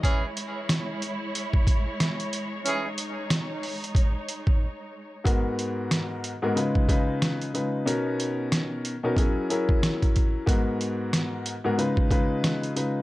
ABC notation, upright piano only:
X:1
M:4/4
L:1/16
Q:"Swing 16ths" 1/4=92
K:Elyd
V:1 name="Upright piano"
z16 | z16 | [G,,G,B,FA]6 z [G,,G,B,FA] [C,G,D^EB]2 [C,G,DEB]4 [C,G,DEB]2 | [B,,B,CDA]6 z [B,,B,CDA] [F,CEGA]2 [F,CEGA]6 |
[G,,G,B,FA]6 z [G,,G,B,FA] [C,G,D^EB]2 [C,G,DEB]4 [C,G,DEB]2 |]